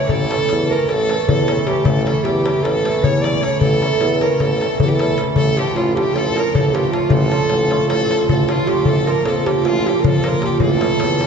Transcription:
Already playing: E3 C#5
0.01 darbuka tek
0.08 A1 A4, darbuka dum
0.30 E3 A3 C#4 E4, darbuka tek
0.40 darbuka tek
0.49 E2, darbuka tek
0.70 E3 A3 C#4 E4 A#4
0.87 A1 A4, darbuka tek
0.99 darbuka tek
1.09 E3 A3 C#4 E4, darbuka tek
1.19 darbuka tek
1.27 E2 A4, darbuka dum
1.38 darbuka tek
1.48 E3 A3 C#4 E4, darbuka tek
1.67 E3 A3 C#4 E4 G4, darbuka tek
1.76 darbuka tek
1.84 A1 A4, darbuka dum
2.04 E3 A3 C#4 E4 A4, darbuka tek
2.16 darbuka tek
2.24 E2 G4, darbuka tek
2.46 E3 A3 C#4 E4, darbuka tek
2.63 A1 A4, darbuka tek
2.75 darbuka tek
2.85 E3 A3 C#4 E4, darbuka tek
2.95 darbuka tek
3.03 E2 C#5, darbuka dum
3.15 darbuka tek
3.22 E3 A3 C#4 E4 D5, darbuka tek
3.41 E3 A3 C#4 E4 C#5, darbuka tek
3.52 darbuka tek
3.60 A1 A4, darbuka dum
3.72 darbuka tek
3.80 E3 A3 C#4 E4, darbuka tek
4.00 E2, darbuka tek
4.11 darbuka tek
4.20 E3 A3 C#4 E4 A#4, darbuka tek
4.39 A1 A4, darbuka tek, darbuka dum
4.61 E3 A3 C#4 E4, darbuka tek
4.71 darbuka tek
4.79 E2 A4, darbuka dum
4.85 G4, darbuka tek
4.92 A4
4.99 E3 A3 C#4 E4, darbuka tek
5.09 darbuka tek
5.18 E3 A3 C#4 E4, darbuka tek
5.27 darbuka tek
5.36 A1 A4, darbuka dum
5.56 F3 A3 D4 F4 G4, darbuka tek
5.67 darbuka tek
5.74 A1 F4, darbuka tek
5.94 F3 A3 D4 F4 G4, darbuka tek
6.00 G4
6.14 A1 A4, darbuka tek
6.26 darbuka tek
6.35 F3 A3 D4 F4 A#4, darbuka tek
6.46 darbuka tek
6.54 A1 A4, darbuka dum
6.65 darbuka tek
6.74 F3 A3 D4 F4 G4, darbuka tek
6.91 F3 A3 D4 F4, darbuka tek
7.02 darbuka tek
7.09 A1 A4, darbuka dum
7.31 F3 A3 D4 F4, darbuka tek
7.41 darbuka tek
7.50 A1, darbuka tek
7.70 F3 A3 D4 F4, darbuka tek
7.89 A1 A4, darbuka tek
8.01 darbuka tek
8.10 F3 A3 D4 F4, darbuka tek
8.20 darbuka tek
8.29 A1 A4, darbuka dum
8.39 darbuka tek
8.48 F3 A3 D4 F4, darbuka tek
8.67 F3 A3 D4 F4 G4, darbuka tek
8.77 darbuka tek
8.85 A1 A4, darbuka dum
9.06 F3 A#3 D4 F4 A#4, darbuka tek
9.17 darbuka tek
9.24 F2 A4, darbuka tek
9.45 F3 A#3 D4 F4 G4, darbuka tek
9.50 G4
9.65 A1 F4, darbuka tek
9.75 darbuka tek
9.85 F3 A#3 D4 F4 G4, darbuka tek
9.96 darbuka tek
10.01 A#4, darbuka dum
10.05 F2 A4
10.15 darbuka tek
10.24 F3 A#3 D4 F4 A#4, darbuka tek
10.28 A#4
10.42 F3 A#3 D4 F4 G4, darbuka tek
10.51 darbuka tek
10.60 A1 A4, darbuka dum
10.71 darbuka tek
10.81 E3 A3 C#4 E4, darbuka tek
10.91 darbuka tek
11.00 E2, darbuka tek
11.20 E3 A3 C#4 E4, darbuka tek

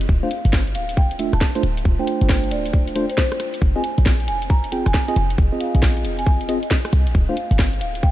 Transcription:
0.01 closed hi-hat
0.09 D1, kick
0.23 A3 D4 F4 C5 F5
0.31 closed hi-hat
0.45 G1, closed hi-hat
0.53 kick, snare
0.67 closed hi-hat
0.75 D1 F5, closed hi-hat
0.89 closed hi-hat
0.97 G5, kick
1.11 closed hi-hat
1.19 A3 D4 F4 E5, closed hi-hat
1.33 D1 A5, cross-stick, closed hi-hat
1.41 kick, snare
1.55 A3 D4 F4 C5, closed hi-hat
1.63 D1, closed hi-hat
1.77 closed hi-hat
1.85 D1, kick
1.99 A3 D4 F4 C5 G5
2.07 G5, closed hi-hat
2.21 G1, closed hi-hat
2.29 kick, snare
2.43 closed hi-hat
2.51 D1 D5, closed hi-hat
2.66 closed hi-hat
2.73 kick
2.88 closed hi-hat
2.96 A3 D4 F4 C5, closed hi-hat
3.09 C5, closed hi-hat
3.17 C5, kick, snare
3.32 cross-stick, closed hi-hat
3.40 cross-stick, closed hi-hat
3.54 closed hi-hat
3.62 F1, kick
3.76 C4 F4 G#4 D#5 G#5
3.84 closed hi-hat
3.98 A#1, closed hi-hat
4.06 kick, snare
4.20 closed hi-hat
4.28 F1 G#5, closed hi-hat
4.42 closed hi-hat
4.50 A#5, kick
4.64 closed hi-hat
4.72 C4 F4 G#4 G5, closed hi-hat
4.86 F1 G#5, cross-stick, closed hi-hat
4.94 kick, snare
5.08 C4 F4 G#4 D#5 G#5, closed hi-hat
5.16 F1, closed hi-hat
5.30 closed hi-hat
5.38 F1, kick
5.52 C4 F4 G#4 D#5
5.60 F5, closed hi-hat
5.75 A#1, closed hi-hat
5.82 kick, snare
5.97 closed hi-hat
6.05 F1, closed hi-hat
6.19 G#5, closed hi-hat
6.27 G#5, kick
6.41 closed hi-hat
6.48 C4 F4 G#4 D#5, closed hi-hat
6.62 D#5, closed hi-hat
6.71 kick, snare
6.85 cross-stick, closed hi-hat
6.93 C2, cross-stick, closed hi-hat
7.07 A#1, closed hi-hat
7.15 D1, kick
7.29 A3 D4 F4 C5 F5
7.37 closed hi-hat
7.51 G1, closed hi-hat
7.59 kick, snare
7.73 closed hi-hat
7.81 D1 F5, closed hi-hat
7.95 closed hi-hat
8.03 G5, kick

